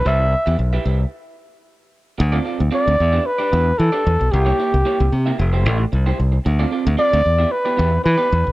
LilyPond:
<<
  \new Staff \with { instrumentName = "Flugelhorn" } { \time 4/4 \key c \major \tempo 4 = 113 e''4 r2. | r4 d''4 b'4 a'4 | g'2 r2 | r4 d''4 b'4 b'4 | }
  \new Staff \with { instrumentName = "Clean electric guitar" } { \time 4/4 \key c \major <e' g' b' e''>16 r8 <e' g' b' e''>16 r16 <e' g' b' e''>16 <e' g' b' e''>16 r2 r16 | r16 <c' f' a' d''>16 <c' f' a' d''>16 r16 <c' f' a' d''>16 r8 <d' g' b' e''>16 r16 <d' g' b' d''>16 <d' g' b' e''>16 r8 <d' g' b' d''>16 r8 | r16 <bes e' g' des''>16 <bes e' g' des''>16 r16 <bes e' g' des''>16 r8 <bes e' g' e''>16 r16 <a e' g' c''>16 <a e' g' d''>16 r8 <a e' g' c''>16 r8 | r16 <c' f' a' d''>16 <c' f' a' d''>16 r16 <c' f' a' d''>16 r8 <b e' g' e''>16 r16 <b e' g' d''>16 <b e' g' e''>16 r8 <b e' g' d''>16 r8 | }
  \new Staff \with { instrumentName = "Fingered electric bass" } { \clef bass \time 4/4 \key c \major c,8. e,16 b,,8 c,8 r2 | d,8 r16 d,16 r16 d,16 e,8 r8 e,8 e16 r16 e,16 b,,16 | c,8 r16 c,16 r16 c,16 c8 f,,8 a,,8 c,8 c,8 | d,8 r16 d,16 r16 d,16 e,8 r8 e,8 e16 r16 e,16 b,,16 | }
>>